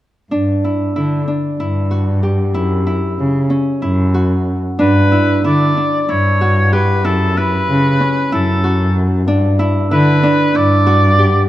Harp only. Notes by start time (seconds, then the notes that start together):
0.31 D4
0.64 E4
0.96 E4
1.28 D4
1.60 E4
1.91 F#4
2.23 G4
2.54 E4
2.87 E4
3.50 C#4
3.82 E4
4.14 F#4
4.79 D4
5.12 E4
5.44 E4
5.77 D4
6.09 E4
6.41 F#4
6.72 G4
7.04 E4
7.37 E4
8.00 C#4
8.32 E4
8.64 F#4
9.28 D4
9.59 E4
9.91 E4
10.23 D4
10.55 E4
10.86 F#4
11.19 G4